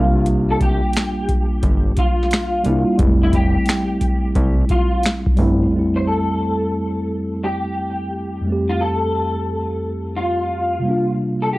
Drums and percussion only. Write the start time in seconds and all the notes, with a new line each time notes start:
0.26 closed hi-hat
0.60 kick, closed hi-hat
0.93 finger snap, snare, closed hi-hat, tambourine
1.29 kick, closed hi-hat
1.63 kick, closed hi-hat
1.97 kick, closed hi-hat
2.23 snare
2.31 finger snap, snare, closed hi-hat, tambourine
2.64 closed hi-hat
2.99 kick, closed hi-hat
3.33 kick, closed hi-hat
3.66 finger snap, snare, closed hi-hat, tambourine
4.01 kick, closed hi-hat
4.35 kick, closed hi-hat
4.69 kick, closed hi-hat
5.03 finger snap, snare, closed hi-hat, tambourine
5.26 kick
5.37 open hi-hat